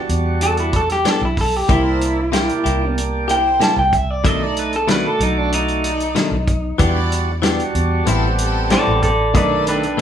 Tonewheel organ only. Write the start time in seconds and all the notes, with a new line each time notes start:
Already playing: G3 D4 F#4
1.68 A#3 D4 E4
2.33 A#3 D4 G4
4.24 A3 D4 D#4
4.88 A3 F#4 D5
6.79 G3 D4 F#4
7.42 G3 D4 F#4
8.05 G3 B3 C4
9.33 D#3 A3 D4